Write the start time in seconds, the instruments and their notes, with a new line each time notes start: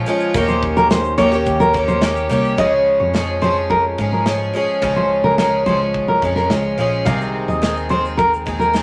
0.06 twelve-string acoustic guitar F3 G#3 C#4 F4, shaker
0.20 shaker
0.34 tine electric piano D#2, twelve-string acoustic guitar D#3 A#3 C#4 G4, kick, shaker
0.48 steel-string acoustic guitar C5, shaker
0.63 kick
0.77 steel-string acoustic guitar A#4, shaker
0.90 steel-string acoustic guitar C5, snare, shaker
1.04 shaker
1.18 tine electric piano D#2, twelve-string acoustic guitar D#3 A#3 C#4 G4, steel-string acoustic guitar C#5, kick, shaker
1.32 twelve-string acoustic guitar A#3 C#4 G4, shaker
1.46 tine electric piano D#2, kick, shaker
1.60 steel-string acoustic guitar A#4, shaker
1.74 twelve-string acoustic guitar D#3 A#3 C#4 G4, kick
1.88 steel-string acoustic guitar C5, shaker
2.01 twelve-string acoustic guitar D#3 A#3 C#4 G4, snare, shaker
2.16 shaker
2.29 tine electric piano C2, twelve-string acoustic guitar D#3 A#3 C#4 G4, shaker
2.44 shaker
2.58 tine electric piano C#2, twelve-string acoustic guitar C#3 F3 G#3 C#4 G#4, steel-string acoustic guitar D#5, kick
3.00 tine electric piano F2, steel-string acoustic guitar C#5
3.14 twelve-string acoustic guitar F3 G#3 C#4 G#4, snare
3.42 twelve-string acoustic guitar F3 G#3 C#4 G#4, steel-string acoustic guitar C5
3.70 steel-string acoustic guitar A#4, kick
3.98 tine electric piano G#2, twelve-string acoustic guitar F3 G#3 C#4 G#4, kick
4.12 steel-string acoustic guitar A#4
4.26 twelve-string acoustic guitar F3 G#3 C#4 G#4, snare
4.54 twelve-string acoustic guitar F3 G#3 C#4 G#4
4.82 tine electric piano C#2, twelve-string acoustic guitar C#3 F3 G#3 C#4 G#4, kick
4.96 steel-string acoustic guitar C5
5.24 tine electric piano C#2, steel-string acoustic guitar A#4
5.38 twelve-string acoustic guitar F3 G#3 C#4 G#4, steel-string acoustic guitar A#4, snare
5.66 tine electric piano C#2, twelve-string acoustic guitar F3 G#3 C#4 G#4, steel-string acoustic guitar C5, kick
5.94 kick
6.08 steel-string acoustic guitar A#4
6.22 tine electric piano F2, twelve-string acoustic guitar F3 G#3 C#4 G#4, kick
6.36 steel-string acoustic guitar A#4, snare
6.50 tine electric piano C#2, twelve-string acoustic guitar F3 G#3 C#4 G#4, snare
6.78 tine electric piano A#1, twelve-string acoustic guitar F3 G#3 C#4 G#4
7.05 tine electric piano C2, twelve-string acoustic guitar C3 D#3 G#3 C4 G#4, steel-string acoustic guitar F5, kick, shaker
7.21 shaker
7.48 tine electric piano D#2, steel-string acoustic guitar D#5, shaker
7.62 twelve-string acoustic guitar D#3 G#3 C4 G#4, snare, shaker
7.77 shaker
7.89 twelve-string acoustic guitar D#3 G#3 C4 G#4, steel-string acoustic guitar C5
8.05 shaker
8.17 steel-string acoustic guitar A#4, kick, shaker
8.33 shaker
8.46 tine electric piano D#2, twelve-string acoustic guitar D#3 G#3 C4 G#4, kick, shaker
8.59 steel-string acoustic guitar A#4, shaker
8.73 twelve-string acoustic guitar D#3 G#3 C4 G#4, snare, shaker